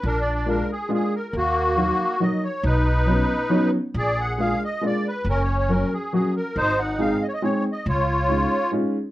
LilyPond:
<<
  \new Staff \with { instrumentName = "Accordion" } { \time 3/4 \key ais \phrygian \tempo 4 = 138 << { \tuplet 3/2 { ais'8 d''8 d''8 } ais'8 gis'8 gis'8 ais'8 | fis'2 dis''8 cis''8 | b'2~ b'8 r8 | d''8 fis''8 eis''8 dis''8 d''8 b'8 |
\tuplet 3/2 { ais'8 cis''8 cis''8 } ais'8 gis'8 gis'8 ais'8 | bis'8 fis''8 eis''8 dis''32 cis''32 dis''16 \tuplet 3/2 { cis''8. r16 dis''8 } | cis''2 r4 | } \\ { d'4. r4. | ais2 r4 | dis'2~ dis'8 r8 | gis'4. r4. |
cis'4. r4. | dis'4. r4. | eis'2 r4 | } >> }
  \new Staff \with { instrumentName = "Upright piano" } { \time 3/4 \key ais \phrygian r4 <gis ais d' eis'>8 r8 <gis ais d' eis'>8 r8 | r4 <fis ais dis' fis'>8 r8 <fis ais dis' fis'>8 r8 | r4 <fis b cis' dis'>8 r8 <fis b cis' dis'>8 r8 | r4 <gis ais d' eis'>8 r8 <gis ais d' eis'>8 r8 |
r4 <fis ais cis' fis'>8 r8 <fis ais cis' fis'>8 r8 | r4 <gis bis dis' gis'>8 r8 <gis bis dis' gis'>8 r8 | r4 <gis cis' dis' eis'>8 r8 <gis cis' dis' eis'>8 r8 | }
  \new Staff \with { instrumentName = "Upright bass" } { \clef bass \time 3/4 \key ais \phrygian ais,,2 r4 | dis,2 r4 | b,,2 r4 | ais,,2 r4 |
fis,,2 r4 | gis,,2 r4 | cis,2 r4 | }
>>